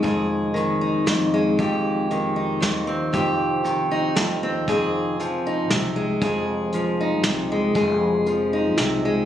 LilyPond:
<<
  \new Staff \with { instrumentName = "Steel-string acoustic guitar" } { \clef bass \time 3/4 \key f \minor \tempo 4 = 117 << { <aes aes'>4. ees'4 aes8 | g'4. ees'4 c'8 | g'4. ees'4 c'8 | aes'4. ees'4 aes8 |
aes'4. ees'4 aes8 | aes'4. ees'4 aes8 | } \\ { <f, ees>4 ees4 f,4 | f,4 ees4 f,4 | f,4 ees4 f,4 | f,4 f4 c4 |
f,4 f4 c4 | f,4 f4 c4 | } >> }
  \new Staff \with { instrumentName = "Upright bass" } { \clef bass \time 3/4 \key f \minor f,,2 f,4 | f,,2 ees,4 | f,,2 ees,4 | f,,2 c,4 |
f,,2 c,4 | f,,2 c,4 | }
  \new DrumStaff \with { instrumentName = "Drums" } \drummode { \time 3/4 <hh bd>4 hh4 <hh sn>4 | <hh bd>4 hh4 <hh sn>4 | <hh bd>4 hh4 <hh sn>4 | <hh bd>4 hh4 <hh sn>4 |
<hh bd>4 hh4 <hh sn>4 | <hh bd>4 hh4 <hh sn>4 | }
>>